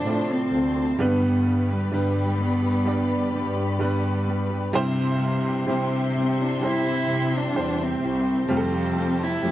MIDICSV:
0, 0, Header, 1, 6, 480
1, 0, Start_track
1, 0, Tempo, 937500
1, 508, Time_signature, 4, 2, 24, 8
1, 4872, End_track
2, 0, Start_track
2, 0, Title_t, "String section"
2, 0, Program_c, 0, 48
2, 0, Note_on_c, 0, 69, 66
2, 0, Note_on_c, 0, 72, 60
2, 0, Note_on_c, 0, 81, 56
2, 0, Note_on_c, 0, 84, 63
2, 487, Note_off_c, 0, 72, 0
2, 488, Note_off_c, 0, 69, 0
2, 488, Note_off_c, 0, 81, 0
2, 488, Note_off_c, 0, 84, 0
2, 507, Note_on_c, 0, 67, 64
2, 507, Note_on_c, 0, 83, 76
2, 508, Note_on_c, 0, 71, 61
2, 508, Note_on_c, 0, 74, 57
2, 2409, Note_off_c, 0, 67, 0
2, 2409, Note_off_c, 0, 71, 0
2, 2409, Note_off_c, 0, 74, 0
2, 2409, Note_off_c, 0, 83, 0
2, 2421, Note_on_c, 0, 84, 75
2, 2422, Note_on_c, 0, 67, 66
2, 2422, Note_on_c, 0, 72, 59
2, 2423, Note_on_c, 0, 76, 65
2, 4326, Note_off_c, 0, 84, 0
2, 4327, Note_off_c, 0, 76, 0
2, 4347, Note_on_c, 0, 79, 56
2, 4348, Note_on_c, 0, 81, 65
2, 4872, Note_off_c, 0, 67, 0
2, 4872, Note_off_c, 0, 72, 0
2, 4872, Note_off_c, 0, 79, 0
2, 4872, Note_off_c, 0, 81, 0
2, 4872, End_track
3, 0, Start_track
3, 0, Title_t, "Cello"
3, 0, Program_c, 1, 42
3, 0, Note_on_c, 1, 62, 85
3, 159, Note_on_c, 1, 60, 86
3, 166, Note_off_c, 1, 62, 0
3, 520, Note_on_c, 1, 59, 83
3, 528, Note_off_c, 1, 60, 0
3, 877, Note_on_c, 1, 55, 70
3, 884, Note_off_c, 1, 59, 0
3, 991, Note_off_c, 1, 55, 0
3, 994, Note_on_c, 1, 55, 74
3, 1234, Note_on_c, 1, 59, 77
3, 1242, Note_off_c, 1, 55, 0
3, 1711, Note_off_c, 1, 59, 0
3, 3163, Note_on_c, 1, 60, 67
3, 3284, Note_on_c, 1, 62, 76
3, 3292, Note_off_c, 1, 60, 0
3, 3408, Note_on_c, 1, 64, 93
3, 3416, Note_off_c, 1, 62, 0
3, 3772, Note_on_c, 1, 62, 80
3, 3780, Note_off_c, 1, 64, 0
3, 4009, Note_on_c, 1, 60, 79
3, 4017, Note_off_c, 1, 62, 0
3, 4359, Note_off_c, 1, 60, 0
3, 4366, Note_on_c, 1, 60, 90
3, 4728, Note_on_c, 1, 64, 80
3, 4735, Note_off_c, 1, 60, 0
3, 4872, Note_off_c, 1, 64, 0
3, 4872, End_track
4, 0, Start_track
4, 0, Title_t, "Nylon-string guitar"
4, 0, Program_c, 2, 24
4, 27, Note_on_c, 2, 53, 60
4, 32, Note_on_c, 2, 60, 62
4, 35, Note_on_c, 2, 65, 64
4, 39, Note_on_c, 2, 69, 66
4, 259, Note_off_c, 2, 53, 0
4, 265, Note_off_c, 2, 60, 0
4, 265, Note_on_c, 2, 53, 52
4, 269, Note_off_c, 2, 65, 0
4, 271, Note_on_c, 2, 60, 62
4, 274, Note_off_c, 2, 69, 0
4, 276, Note_on_c, 2, 65, 55
4, 280, Note_on_c, 2, 69, 57
4, 379, Note_off_c, 2, 69, 0
4, 385, Note_on_c, 2, 69, 41
4, 387, Note_off_c, 2, 53, 0
4, 387, Note_off_c, 2, 65, 0
4, 390, Note_off_c, 2, 60, 0
4, 394, Note_on_c, 2, 65, 40
4, 400, Note_on_c, 2, 60, 35
4, 504, Note_on_c, 2, 43, 71
4, 507, Note_off_c, 2, 69, 0
4, 508, Note_on_c, 2, 50, 75
4, 509, Note_on_c, 2, 55, 75
4, 510, Note_off_c, 2, 60, 0
4, 511, Note_off_c, 2, 65, 0
4, 512, Note_on_c, 2, 59, 75
4, 513, Note_on_c, 2, 62, 80
4, 516, Note_on_c, 2, 67, 82
4, 619, Note_off_c, 2, 67, 0
4, 625, Note_off_c, 2, 62, 0
4, 625, Note_on_c, 2, 67, 50
4, 626, Note_off_c, 2, 43, 0
4, 628, Note_off_c, 2, 50, 0
4, 629, Note_off_c, 2, 55, 0
4, 629, Note_off_c, 2, 59, 0
4, 631, Note_on_c, 2, 62, 47
4, 635, Note_on_c, 2, 59, 42
4, 640, Note_on_c, 2, 55, 41
4, 739, Note_off_c, 2, 55, 0
4, 745, Note_off_c, 2, 59, 0
4, 745, Note_on_c, 2, 55, 53
4, 747, Note_off_c, 2, 67, 0
4, 750, Note_off_c, 2, 62, 0
4, 751, Note_on_c, 2, 59, 56
4, 755, Note_on_c, 2, 62, 58
4, 760, Note_on_c, 2, 67, 59
4, 985, Note_off_c, 2, 55, 0
4, 986, Note_on_c, 2, 43, 72
4, 987, Note_off_c, 2, 59, 0
4, 988, Note_on_c, 2, 50, 64
4, 989, Note_off_c, 2, 62, 0
4, 990, Note_off_c, 2, 67, 0
4, 991, Note_on_c, 2, 55, 71
4, 993, Note_on_c, 2, 59, 66
4, 995, Note_on_c, 2, 62, 78
4, 996, Note_on_c, 2, 67, 73
4, 1218, Note_off_c, 2, 55, 0
4, 1223, Note_off_c, 2, 59, 0
4, 1224, Note_on_c, 2, 55, 52
4, 1227, Note_off_c, 2, 43, 0
4, 1228, Note_off_c, 2, 50, 0
4, 1228, Note_off_c, 2, 62, 0
4, 1229, Note_on_c, 2, 59, 56
4, 1232, Note_off_c, 2, 67, 0
4, 1234, Note_on_c, 2, 62, 53
4, 1239, Note_on_c, 2, 67, 64
4, 1338, Note_off_c, 2, 67, 0
4, 1344, Note_off_c, 2, 62, 0
4, 1344, Note_on_c, 2, 67, 48
4, 1346, Note_off_c, 2, 55, 0
4, 1349, Note_off_c, 2, 59, 0
4, 1350, Note_on_c, 2, 62, 48
4, 1355, Note_on_c, 2, 59, 45
4, 1360, Note_on_c, 2, 55, 38
4, 1579, Note_off_c, 2, 67, 0
4, 1585, Note_on_c, 2, 67, 48
4, 1586, Note_off_c, 2, 62, 0
4, 1590, Note_off_c, 2, 59, 0
4, 1592, Note_on_c, 2, 62, 43
4, 1594, Note_off_c, 2, 55, 0
4, 1596, Note_on_c, 2, 59, 44
4, 1600, Note_on_c, 2, 55, 38
4, 1699, Note_off_c, 2, 55, 0
4, 1705, Note_off_c, 2, 59, 0
4, 1705, Note_on_c, 2, 55, 54
4, 1707, Note_off_c, 2, 67, 0
4, 1710, Note_off_c, 2, 62, 0
4, 1711, Note_on_c, 2, 59, 56
4, 1716, Note_on_c, 2, 62, 57
4, 1721, Note_on_c, 2, 67, 62
4, 1818, Note_off_c, 2, 67, 0
4, 1824, Note_off_c, 2, 62, 0
4, 1824, Note_on_c, 2, 67, 52
4, 1827, Note_off_c, 2, 55, 0
4, 1830, Note_off_c, 2, 59, 0
4, 1830, Note_on_c, 2, 62, 54
4, 1836, Note_on_c, 2, 59, 45
4, 1839, Note_on_c, 2, 55, 46
4, 1944, Note_off_c, 2, 55, 0
4, 1946, Note_off_c, 2, 59, 0
4, 1946, Note_off_c, 2, 67, 0
4, 1946, Note_on_c, 2, 43, 59
4, 1949, Note_off_c, 2, 62, 0
4, 1949, Note_on_c, 2, 50, 76
4, 1950, Note_on_c, 2, 55, 78
4, 1952, Note_on_c, 2, 59, 77
4, 1955, Note_on_c, 2, 62, 80
4, 1957, Note_on_c, 2, 67, 74
4, 2178, Note_off_c, 2, 55, 0
4, 2185, Note_off_c, 2, 59, 0
4, 2185, Note_on_c, 2, 55, 64
4, 2187, Note_off_c, 2, 43, 0
4, 2189, Note_off_c, 2, 50, 0
4, 2189, Note_off_c, 2, 62, 0
4, 2191, Note_on_c, 2, 59, 65
4, 2193, Note_off_c, 2, 67, 0
4, 2195, Note_on_c, 2, 62, 68
4, 2201, Note_on_c, 2, 67, 72
4, 2297, Note_off_c, 2, 67, 0
4, 2303, Note_on_c, 2, 67, 46
4, 2304, Note_off_c, 2, 62, 0
4, 2307, Note_off_c, 2, 55, 0
4, 2309, Note_off_c, 2, 59, 0
4, 2310, Note_on_c, 2, 62, 44
4, 2315, Note_on_c, 2, 59, 42
4, 2319, Note_on_c, 2, 55, 40
4, 2422, Note_off_c, 2, 55, 0
4, 2424, Note_on_c, 2, 48, 78
4, 2426, Note_off_c, 2, 67, 0
4, 2428, Note_on_c, 2, 55, 91
4, 2429, Note_off_c, 2, 59, 0
4, 2429, Note_off_c, 2, 62, 0
4, 2431, Note_on_c, 2, 60, 93
4, 2433, Note_on_c, 2, 64, 89
4, 2435, Note_on_c, 2, 67, 98
4, 2538, Note_off_c, 2, 67, 0
4, 2544, Note_on_c, 2, 67, 59
4, 2546, Note_off_c, 2, 48, 0
4, 2546, Note_off_c, 2, 64, 0
4, 2548, Note_off_c, 2, 55, 0
4, 2550, Note_off_c, 2, 60, 0
4, 2552, Note_on_c, 2, 64, 50
4, 2558, Note_on_c, 2, 60, 47
4, 2662, Note_off_c, 2, 60, 0
4, 2663, Note_on_c, 2, 55, 62
4, 2666, Note_off_c, 2, 67, 0
4, 2668, Note_off_c, 2, 64, 0
4, 2669, Note_on_c, 2, 60, 63
4, 2674, Note_on_c, 2, 64, 65
4, 2678, Note_on_c, 2, 67, 76
4, 2902, Note_off_c, 2, 55, 0
4, 2904, Note_off_c, 2, 60, 0
4, 2905, Note_on_c, 2, 48, 77
4, 2906, Note_off_c, 2, 64, 0
4, 2908, Note_off_c, 2, 67, 0
4, 2908, Note_on_c, 2, 55, 82
4, 2910, Note_on_c, 2, 60, 89
4, 2912, Note_on_c, 2, 64, 86
4, 2915, Note_on_c, 2, 67, 82
4, 3140, Note_off_c, 2, 55, 0
4, 3145, Note_off_c, 2, 60, 0
4, 3146, Note_on_c, 2, 55, 51
4, 3147, Note_off_c, 2, 48, 0
4, 3150, Note_off_c, 2, 64, 0
4, 3151, Note_on_c, 2, 60, 61
4, 3152, Note_off_c, 2, 67, 0
4, 3156, Note_on_c, 2, 64, 60
4, 3161, Note_on_c, 2, 67, 59
4, 3258, Note_off_c, 2, 67, 0
4, 3265, Note_on_c, 2, 67, 48
4, 3267, Note_off_c, 2, 55, 0
4, 3267, Note_off_c, 2, 64, 0
4, 3270, Note_off_c, 2, 60, 0
4, 3273, Note_on_c, 2, 64, 45
4, 3281, Note_on_c, 2, 60, 42
4, 3497, Note_off_c, 2, 67, 0
4, 3503, Note_on_c, 2, 67, 51
4, 3506, Note_off_c, 2, 64, 0
4, 3513, Note_off_c, 2, 60, 0
4, 3513, Note_on_c, 2, 64, 45
4, 3519, Note_on_c, 2, 60, 43
4, 3623, Note_off_c, 2, 60, 0
4, 3624, Note_on_c, 2, 55, 55
4, 3626, Note_off_c, 2, 67, 0
4, 3628, Note_off_c, 2, 64, 0
4, 3629, Note_on_c, 2, 60, 64
4, 3638, Note_on_c, 2, 67, 57
4, 3738, Note_off_c, 2, 67, 0
4, 3744, Note_on_c, 2, 67, 44
4, 3746, Note_off_c, 2, 55, 0
4, 3749, Note_off_c, 2, 60, 0
4, 3752, Note_on_c, 2, 64, 42
4, 3760, Note_on_c, 2, 60, 34
4, 3866, Note_off_c, 2, 60, 0
4, 3866, Note_off_c, 2, 67, 0
4, 3866, Note_on_c, 2, 48, 59
4, 3868, Note_off_c, 2, 64, 0
4, 3869, Note_on_c, 2, 55, 60
4, 3872, Note_on_c, 2, 60, 66
4, 3874, Note_on_c, 2, 64, 71
4, 3876, Note_on_c, 2, 67, 67
4, 4099, Note_off_c, 2, 55, 0
4, 4105, Note_off_c, 2, 60, 0
4, 4105, Note_on_c, 2, 55, 52
4, 4107, Note_off_c, 2, 48, 0
4, 4109, Note_off_c, 2, 64, 0
4, 4111, Note_on_c, 2, 60, 57
4, 4112, Note_off_c, 2, 67, 0
4, 4115, Note_on_c, 2, 64, 57
4, 4121, Note_on_c, 2, 67, 58
4, 4345, Note_on_c, 2, 53, 77
4, 4346, Note_off_c, 2, 55, 0
4, 4346, Note_off_c, 2, 60, 0
4, 4348, Note_on_c, 2, 57, 69
4, 4350, Note_off_c, 2, 67, 0
4, 4352, Note_off_c, 2, 64, 0
4, 4352, Note_on_c, 2, 60, 75
4, 4354, Note_on_c, 2, 65, 79
4, 4356, Note_on_c, 2, 67, 84
4, 4459, Note_off_c, 2, 67, 0
4, 4465, Note_on_c, 2, 67, 47
4, 4467, Note_off_c, 2, 53, 0
4, 4467, Note_off_c, 2, 65, 0
4, 4468, Note_off_c, 2, 57, 0
4, 4470, Note_off_c, 2, 60, 0
4, 4473, Note_on_c, 2, 65, 51
4, 4480, Note_on_c, 2, 60, 42
4, 4584, Note_off_c, 2, 60, 0
4, 4584, Note_on_c, 2, 57, 49
4, 4587, Note_off_c, 2, 67, 0
4, 4589, Note_off_c, 2, 65, 0
4, 4590, Note_on_c, 2, 60, 54
4, 4595, Note_on_c, 2, 65, 60
4, 4600, Note_on_c, 2, 67, 65
4, 4824, Note_off_c, 2, 57, 0
4, 4827, Note_off_c, 2, 60, 0
4, 4828, Note_on_c, 2, 53, 73
4, 4830, Note_on_c, 2, 57, 68
4, 4832, Note_off_c, 2, 65, 0
4, 4832, Note_off_c, 2, 67, 0
4, 4833, Note_on_c, 2, 60, 69
4, 4872, Note_off_c, 2, 53, 0
4, 4872, Note_off_c, 2, 57, 0
4, 4872, Note_off_c, 2, 60, 0
4, 4872, End_track
5, 0, Start_track
5, 0, Title_t, "Upright piano"
5, 0, Program_c, 3, 0
5, 0, Control_c, 3, 64, 127
5, 0, Note_on_c, 3, 53, 60
5, 0, Note_on_c, 3, 57, 62
5, 0, Note_on_c, 3, 60, 61
5, 0, Note_on_c, 3, 65, 69
5, 0, Note_on_c, 3, 74, 73
5, 27, Note_off_c, 3, 57, 0
5, 27, Note_on_c, 3, 57, 59
5, 29, Note_off_c, 3, 60, 0
5, 29, Note_on_c, 3, 60, 55
5, 33, Note_off_c, 3, 65, 0
5, 33, Note_on_c, 3, 65, 57
5, 37, Note_off_c, 3, 74, 0
5, 37, Note_on_c, 3, 74, 67
5, 484, Note_off_c, 3, 57, 0
5, 485, Note_off_c, 3, 60, 0
5, 487, Note_off_c, 3, 65, 0
5, 489, Note_off_c, 3, 74, 0
5, 505, Note_on_c, 3, 55, 86
5, 508, Note_on_c, 3, 59, 78
5, 509, Note_on_c, 3, 50, 56
5, 510, Note_on_c, 3, 43, 59
5, 511, Note_on_c, 3, 62, 77
5, 515, Note_on_c, 3, 71, 91
5, 516, Control_c, 3, 64, 0
5, 517, Note_off_c, 3, 53, 0
5, 601, Control_c, 3, 64, 127
5, 963, Note_off_c, 3, 55, 0
5, 965, Note_off_c, 3, 59, 0
5, 966, Note_off_c, 3, 62, 0
5, 968, Note_off_c, 3, 71, 0
5, 981, Note_on_c, 3, 55, 63
5, 984, Note_on_c, 3, 59, 58
5, 988, Note_on_c, 3, 62, 60
5, 990, Note_on_c, 3, 71, 70
5, 1208, Note_off_c, 3, 50, 0
5, 1209, Note_off_c, 3, 43, 0
5, 1441, Note_off_c, 3, 55, 0
5, 1443, Note_off_c, 3, 59, 0
5, 1444, Note_off_c, 3, 62, 0
5, 1445, Note_off_c, 3, 71, 0
5, 1462, Note_on_c, 3, 55, 60
5, 1465, Note_on_c, 3, 59, 58
5, 1468, Note_on_c, 3, 62, 59
5, 1472, Note_on_c, 3, 74, 70
5, 1921, Note_off_c, 3, 55, 0
5, 1923, Note_off_c, 3, 59, 0
5, 1924, Note_off_c, 3, 62, 0
5, 1926, Note_off_c, 3, 74, 0
5, 1941, Note_on_c, 3, 55, 75
5, 1944, Note_on_c, 3, 59, 66
5, 1948, Note_on_c, 3, 62, 69
5, 1950, Note_on_c, 3, 71, 78
5, 2401, Note_off_c, 3, 55, 0
5, 2402, Note_off_c, 3, 59, 0
5, 2404, Note_off_c, 3, 62, 0
5, 2405, Note_off_c, 3, 71, 0
5, 2423, Note_on_c, 3, 55, 105
5, 2427, Note_on_c, 3, 60, 93
5, 2428, Note_on_c, 3, 43, 71
5, 2431, Note_on_c, 3, 64, 94
5, 2434, Note_on_c, 3, 72, 110
5, 2435, Control_c, 3, 64, 0
5, 2514, Control_c, 3, 64, 127
5, 2882, Note_off_c, 3, 55, 0
5, 2884, Note_off_c, 3, 60, 0
5, 2886, Note_off_c, 3, 64, 0
5, 2887, Note_off_c, 3, 72, 0
5, 2901, Note_on_c, 3, 55, 79
5, 2904, Note_on_c, 3, 60, 75
5, 2907, Note_on_c, 3, 64, 73
5, 2911, Note_on_c, 3, 67, 81
5, 3128, Note_off_c, 3, 43, 0
5, 3361, Note_off_c, 3, 55, 0
5, 3362, Note_off_c, 3, 60, 0
5, 3364, Note_off_c, 3, 64, 0
5, 3366, Note_off_c, 3, 67, 0
5, 3384, Note_on_c, 3, 55, 68
5, 3388, Note_on_c, 3, 60, 59
5, 3392, Note_on_c, 3, 64, 59
5, 3394, Note_on_c, 3, 72, 66
5, 3842, Note_off_c, 3, 55, 0
5, 3844, Note_off_c, 3, 60, 0
5, 3846, Note_off_c, 3, 64, 0
5, 3847, Note_off_c, 3, 72, 0
5, 3863, Note_on_c, 3, 55, 62
5, 3866, Note_on_c, 3, 60, 56
5, 3868, Note_on_c, 3, 64, 53
5, 3872, Note_on_c, 3, 72, 69
5, 4322, Note_off_c, 3, 55, 0
5, 4323, Note_off_c, 3, 60, 0
5, 4324, Note_off_c, 3, 64, 0
5, 4326, Note_off_c, 3, 72, 0
5, 4345, Note_on_c, 3, 55, 85
5, 4347, Note_on_c, 3, 60, 79
5, 4348, Note_on_c, 3, 48, 57
5, 4351, Note_on_c, 3, 65, 73
5, 4354, Note_on_c, 3, 67, 75
5, 4356, Control_c, 3, 64, 0
5, 4385, Note_off_c, 3, 67, 0
5, 4387, Note_on_c, 3, 69, 93
5, 4458, Control_c, 3, 64, 127
5, 4803, Note_off_c, 3, 55, 0
5, 4804, Note_off_c, 3, 60, 0
5, 4806, Note_off_c, 3, 65, 0
5, 4824, Note_off_c, 3, 69, 0
5, 4826, Note_on_c, 3, 55, 62
5, 4829, Note_on_c, 3, 60, 55
5, 4833, Note_on_c, 3, 53, 54
5, 4835, Note_on_c, 3, 67, 71
5, 4872, Note_off_c, 3, 48, 0
5, 4872, Note_off_c, 3, 53, 0
5, 4872, Note_off_c, 3, 55, 0
5, 4872, Note_off_c, 3, 60, 0
5, 4872, Note_off_c, 3, 67, 0
5, 4872, End_track
6, 0, Start_track
6, 0, Title_t, "Cello section"
6, 0, Program_c, 4, 48
6, 27, Note_on_c, 4, 45, 81
6, 251, Note_off_c, 4, 45, 0
6, 267, Note_on_c, 4, 38, 83
6, 491, Note_off_c, 4, 38, 0
6, 506, Note_on_c, 4, 43, 91
6, 967, Note_off_c, 4, 43, 0
6, 989, Note_on_c, 4, 43, 95
6, 1689, Note_off_c, 4, 43, 0
6, 1708, Note_on_c, 4, 43, 94
6, 2408, Note_off_c, 4, 43, 0
6, 2429, Note_on_c, 4, 48, 96
6, 2888, Note_off_c, 4, 48, 0
6, 2910, Note_on_c, 4, 48, 89
6, 3609, Note_off_c, 4, 48, 0
6, 3628, Note_on_c, 4, 48, 86
6, 3852, Note_off_c, 4, 48, 0
6, 3867, Note_on_c, 4, 40, 79
6, 4091, Note_off_c, 4, 40, 0
6, 4106, Note_on_c, 4, 36, 88
6, 4330, Note_off_c, 4, 36, 0
6, 4347, Note_on_c, 4, 41, 94
6, 4807, Note_off_c, 4, 41, 0
6, 4828, Note_on_c, 4, 41, 90
6, 4872, Note_off_c, 4, 41, 0
6, 4872, End_track
0, 0, End_of_file